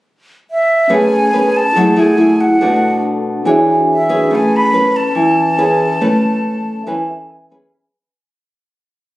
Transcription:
0.51 flute E5
0.88 nylon-string guitar A3 C#4 G#4 B4, tine electric piano C#4 B4
0.93 tine electric piano G#5, flute G#5
1.33 nylon-string guitar C#4 G#4 B4
1.57 flute A5
1.72 nylon-string guitar F#3 A3, tine electric piano E4 G#4 A4
1.76 nylon-string guitar E4 G#4, tine electric piano F#5
1.96 nylon-string guitar A3 E4 G#4, flute G#5
2.17 nylon-string guitar A3 E4 G#4
2.41 flute F#5
2.58 nylon-string guitar B2 A3, tine electric piano D4 A4
2.62 nylon-string guitar D4 F#4, tine electric piano B4 F#5
3.43 nylon-string guitar E3 D4 G#4 C#5, tine electric piano D4 F#4 G#4
3.47 tine electric piano C#5 E5
3.93 flute E5
4.09 nylon-string guitar C#4 G#4 B4
4.27 nylon-string guitar A3, tine electric piano C#4
4.31 tine electric piano B4 B5
4.35 flute G#5
4.56 flute B5
4.73 nylon-string guitar C#4 B4
4.96 flute A5
5.15 nylon-string guitar E3
5.58 nylon-string guitar C#4 G#4 B4
6.01 nylon-string guitar A3 C#4 B4
6.87 nylon-string guitar E3 C#4 B4
7.07 tine electric piano C#4 A4 B4 E5 G#5
7.30 tine electric piano G#5
7.51 nylon-string guitar C#4 G#4 B4, tine electric piano B5

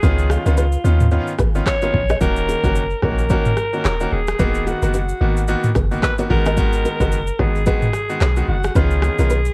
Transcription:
Already playing: alto saxophone G#4
0.02 808-style bass C#2, grand piano D#3 B3 C#4 F4, nylon-string guitar G#4 B4, kick, shaker
0.18 shaker
0.30 alto saxophone F4, nylon-string guitar F4 G#4, cross-stick, shaker
0.46 808-style bass C#2, grand piano D#3 B3 C#4 F4, nylon-string guitar F#4 A#4, shaker
0.58 alto saxophone F4, nylon-string guitar G#4 B4, shaker
0.73 shaker
0.84 808-style bass D#2, grand piano D#3 B3 C#4 F4, shaker
1.01 mid tom, shaker
1.12 grand piano D#3 B3 C#4 F4, shaker
1.27 shaker
1.39 808-style bass G#1, nylon-string guitar G#4 B4, kick, cross-stick, shaker
1.55 grand piano D#3 B3 C#4 F4, shaker
1.66 alto saxophone C#5, kick, cross-stick, clap, shaker
1.82 grand piano D#3 B3 C#4 F4, nylon-string guitar A#4 C#5, shaker
1.94 808-style bass A#1, kick
2.09 nylon-string guitar B4 D#5, cross-stick, shaker
2.21 808-style bass D#1, grand piano D#3 A#3 C#4 F#4, alto saxophone A#4, kick, shaker
2.37 shaker
2.49 nylon-string guitar F4 G#4, shaker
2.64 808-style bass F#1, grand piano D#3 A#3 C#4 F#4, nylon-string guitar F#4 A#4, kick, shaker
2.76 shaker
2.91 shaker
3.03 808-style bass A#1, grand piano D#3 A#3 C#4 F#4, alto saxophone A#4, nylon-string guitar A#4 C#5, kick, cross-stick
3.19 shaker
3.30 grand piano D#3 A#3 C#4 F#4, nylon-string guitar F#4 A#4, kick, shaker
3.45 mid tom, shaker
3.57 cross-stick, shaker
3.73 grand piano D#3 A#3 C#4 F#4, shaker
3.85 808-style bass D#1, nylon-string guitar A#4 C#5, cross-stick, clap, shaker
4.00 grand piano D#3 A#3 C#4 F#4, shaker
4.12 808-style bass D#1, alto saxophone G#4
4.27 cross-stick, shaker
4.39 808-style bass D#1, grand piano D#3 A#3 B3 F#4, nylon-string guitar F#4 B4, kick, shaker
4.55 shaker
4.67 nylon-string guitar F4 G#4, alto saxophone F#4, shaker
4.82 808-style bass F#1, grand piano D#3 A#3 B3 F#4, nylon-string guitar F#4 A#4, shaker
4.94 alto saxophone F#4, nylon-string guitar F#4 B4, shaker
5.09 shaker
5.21 808-style bass G#1, grand piano D#3 A#3 B3 F#4
5.37 shaker
5.48 grand piano D#3 A#3 B3 F#4, shaker
5.64 mid tom, shaker
5.75 808-style bass F#1, nylon-string guitar G#4 B4, kick, cross-stick, shaker
5.91 grand piano D#3 A#3 B3 F#4, shaker
6.03 alto saxophone B4, kick, cross-stick, clap, shaker
6.18 grand piano D#3 A#3 B3 F#4, nylon-string guitar A#4 C#5, shaker
6.30 808-style bass G#1, grand piano D#3 G#3 B3 F#4, alto saxophone A#4, kick
6.46 nylon-string guitar B4 D#5, cross-stick, shaker
6.57 grand piano D#3 G#3 B3 F#4, kick, shaker
6.73 shaker
6.85 nylon-string guitar F#4 A#4, shaker
7.00 808-style bass F#1, grand piano D#3 G#3 B3 F#4, nylon-string guitar G#4 B4, kick, shaker
7.12 shaker
7.27 shaker
7.39 808-style bass G#1, grand piano D#3 G#3 B3 F#4, alto saxophone G#4, nylon-string guitar A#4 C#5, kick, cross-stick
7.55 shaker
7.66 grand piano D#3 G#3 B3 F#4, alto saxophone G#4, nylon-string guitar G#4 B4, kick, shaker
7.82 mid tom, shaker
7.93 cross-stick, shaker
8.09 grand piano D#3 G#3 B3 F#4, shaker
8.21 808-style bass B1, nylon-string guitar G#4 C#5, cross-stick, clap, shaker
8.36 grand piano D#3 G#3 B3 F#4, shaker
8.48 808-style bass F#1, alto saxophone F#4
8.64 cross-stick, shaker
8.75 808-style bass C#2, grand piano D#3 B3 C#4 F4, alto saxophone G#4, nylon-string guitar G#4 B4, kick, shaker
8.91 shaker
9.02 nylon-string guitar F4 G#4, cross-stick, shaker
9.19 808-style bass B1, grand piano D#3 B3 C#4 F4, nylon-string guitar F#4 A#4, shaker
9.30 nylon-string guitar G#4 B4, shaker
9.45 shaker

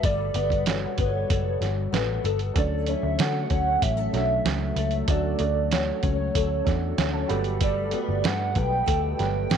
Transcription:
Already playing: ambient pad B2 G3 A4, nylon-string guitar B3 F#4
0.03 picked electric bass G1, nylon-string guitar G3 A4, soft synth lead D5, kick, closed hi-hat
0.34 picked electric bass G1, nylon-string guitar B3, closed hi-hat
0.50 kick, closed hi-hat
0.66 nylon-string guitar F#4, soft synth lead C#5, snare, closed hi-hat
0.98 picked electric bass G1, nylon-string guitar B3, kick, closed hi-hat
1.30 picked electric bass F#1, nylon-string guitar A4, kick, closed hi-hat
1.61 picked electric bass G1, nylon-string guitar F#4, snare, closed hi-hat
1.92 picked electric bass A1, nylon-string guitar B3, snare, closed hi-hat
2.24 picked electric bass G1, nylon-string guitar A4, closed hi-hat
2.39 closed hi-hat
2.54 picked electric bass D2, upright piano F#3 C#4 D4 A4, ambient pad F#3 A3, nylon-string guitar A4, kick, closed hi-hat
2.58 soft synth lead D5
2.86 upright piano F#3 C#4 D4 A4, nylon-string guitar C#4, soft synth lead E5, closed hi-hat
3.03 picked electric bass D2
3.19 picked electric bass D3, nylon-string guitar F#4, soft synth lead F#5, snare, closed hi-hat
3.50 picked electric bass D2, nylon-string guitar C#4, kick, closed hi-hat
3.82 picked electric bass A1, nylon-string guitar G4, soft synth lead E5, kick, closed hi-hat
3.97 nylon-string guitar A4
4.13 picked electric bass B1, upright piano F#3 C#4 D4 A4, nylon-string guitar F#4, snare, closed hi-hat
4.45 picked electric bass C#2, snare, closed hi-hat
4.76 picked electric bass C#2, nylon-string guitar A4, closed hi-hat
4.91 closed hi-hat
5.07 picked electric bass D2, upright piano F#3 C#4 D4 F#4, nylon-string guitar A4, soft synth lead D5, kick, closed hi-hat
5.38 picked electric bass D2, upright piano F#3 A3 D4 A4, closed hi-hat
5.72 nylon-string guitar F#4, soft synth lead C#5, snare, closed hi-hat
6.03 picked electric bass C#2, nylon-string guitar C#4, kick, closed hi-hat
6.35 picked electric bass D2, nylon-string guitar A4, kick, closed hi-hat
6.64 picked electric bass E2, upright piano F#3 C#4 D4 A4, nylon-string guitar F#4, kick, snare, closed hi-hat
6.98 picked electric bass D2, nylon-string guitar C#4, upright piano F#5, snare, closed hi-hat
7.13 upright piano A5
7.28 picked electric bass G1, ambient pad B2 A3, upright piano G3 B3 F#4 A4 B5, nylon-string guitar G3, closed hi-hat
7.44 closed hi-hat
7.61 nylon-string guitar G3 A4, soft synth lead D5, kick, closed hi-hat
7.91 upright piano G3 B3 F#4 A4, nylon-string guitar B3, closed hi-hat
8.08 picked electric bass G1
8.24 picked electric bass G2, soft synth lead F#5, snare, closed hi-hat
8.55 picked electric bass B1, nylon-string guitar B3, soft synth lead G5, kick, closed hi-hat
8.86 picked electric bass D2, nylon-string guitar A4, kick, closed hi-hat
9.18 picked electric bass G1, upright piano F#3 G3 B3 B4, snare, closed hi-hat
9.50 picked electric bass A1, nylon-string guitar B3, snare, closed hi-hat

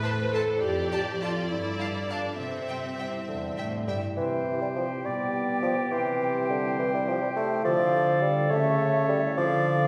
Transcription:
Already playing: cello section A2, harp A2 E4, viola section B4, violin section C5
0.04 harp C4, violin section C5 A5
0.33 harp E4, viola section A4, violin section C5 A5
0.62 harp F2, cello section F2, viola section G4, violin section D5
0.93 violin section D5 A5
1.21 viola section F4, harp F4 A4, violin section D5 A5
1.50 harp G2, cello section G2, viola section E4
1.79 harp B3, violin section F5 A5
2.09 viola section D4, harp F4 A4, violin section F5 A5
2.38 cello section C3, harp C3, viola section C4, violin section E5
2.69 harp G3, violin section E5 G5
2.99 harp E4, violin section E5 G5
3.28 cello section E2, bassoon D3, harp C5
3.57 cello section A2, harp G4, violin section E5 G5
3.87 cello section G2, bassoon G3, violin section E5 G5
4.17 french horn section C3, harp C3, bassoon E3, clarinet G4, oboe C5, flute G5
4.62 bassoon G3
4.76 bassoon F3, harp E4 G4
5.05 harp B2, bassoon G3, french horn section B3, oboe D5
5.33 harp D4
5.62 bassoon F3, harp D4 G4
5.91 harp C3, french horn section C3, bassoon E3, oboe C5
6.20 harp G3
6.49 bassoon D3, harp E4
6.79 bassoon E3
6.94 bassoon G3
7.06 bassoon F3, harp G4
7.23 bassoon G3
7.35 bassoon A3, harp E4
7.63 french horn section D3, harp D3, bassoon F3, clarinet A4, oboe D5, flute F5
7.93 harp D4
8.22 bassoon G3, harp D4
8.51 harp C#3, french horn section C#3, bassoon A3, oboe C#5, flute E5
9.08 bassoon G3, harp E4 A4
9.36 french horn section D3, harp D3, bassoon F3, oboe D5, flute F5
9.65 harp D4

